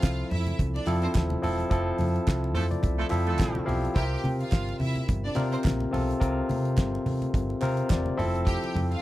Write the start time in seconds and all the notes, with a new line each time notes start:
Already playing: F3 C4 E4 F4 A4 C5 F5
0.03 C2, kick, snare, clap, closed hi-hat, muted conga
0.31 F2 E4 E5, open hi-hat, low conga
0.47 closed hi-hat, high conga
0.59 C2, kick, closed hi-hat, muted conga, low conga
0.75 D4 D5, muted conga
0.86 F2 F3 C4 E4 A4, clap, open hi-hat, high conga
1.02 C4 C5, closed hi-hat
1.15 D#1, kick, snare, clap, closed hi-hat, muted conga, high conga
1.30 muted conga, high conga
1.42 E1 F3 C4 E4 A4, open hi-hat, low conga
1.60 closed hi-hat
1.70 F1 F3 C4 E4 A4, kick, closed hi-hat, muted conga
1.98 F2, open hi-hat, high conga
2.16 closed hi-hat
2.28 C2, kick, snare, clap, closed hi-hat
2.44 muted conga
2.55 F2 F3 A3 E4 A4 C5, open hi-hat, low conga
2.71 D5, closed hi-hat, high conga
2.83 C2 E5, kick, closed hi-hat, low conga
2.99 F3 A3 E4 A4
3.10 F2 F3 C4 E4 A4 E5, clap, open hi-hat, high conga
3.27 F3 A3 E4 A4, closed hi-hat
3.38 A#1 G5, kick, snare, clap, closed hi-hat, high conga
3.55 muted conga, high conga
3.65 B1 F3 C4 E4 G4 F5, open hi-hat, low conga
3.85 closed hi-hat
3.94 C2 C3 C4 E4 G4 A#4 G5, kick, closed hi-hat
4.02 F4
4.23 C3, open hi-hat, high conga
4.40 F4 F5, closed hi-hat
4.52 G1, kick, snare, clap, closed hi-hat
4.69 muted conga
4.80 C3 E4 E5, open hi-hat, low conga
4.96 closed hi-hat, high conga
5.09 G1, kick, closed hi-hat, muted conga, low conga
5.24 D4 D5
5.35 C3 C4 F4 A#4, clap, open hi-hat, high conga
5.52 C4 C5, closed hi-hat
5.64 A#1, kick, snare, clap, closed hi-hat, muted conga, high conga
5.80 muted conga, high conga
5.92 B1 C3 C4 F4 A4, open hi-hat, low conga
6.11 closed hi-hat
6.19 C2 C3 C4 F4 A#4, kick, closed hi-hat, muted conga
6.49 C3, open hi-hat, high conga
6.65 closed hi-hat
6.78 G1, kick, snare, clap, closed hi-hat, muted conga
6.95 muted conga
7.06 C3, open hi-hat, low conga
7.22 closed hi-hat, high conga
7.34 G1, kick, closed hi-hat, muted conga, low conga
7.50 muted conga
7.61 C3 C4 F4 A#4 C5, clap, open hi-hat, high conga
7.77 closed hi-hat
7.89 E1 D5, kick, snare, clap, closed hi-hat, muted conga, high conga
8.06 high conga
8.17 F1 F3 C4 E4 A4 E5, open hi-hat, low conga
8.35 closed hi-hat
8.46 G4 G5, kick, closed hi-hat, muted conga
8.64 muted conga
8.74 F2, open hi-hat, high conga
8.91 F4 F5, closed hi-hat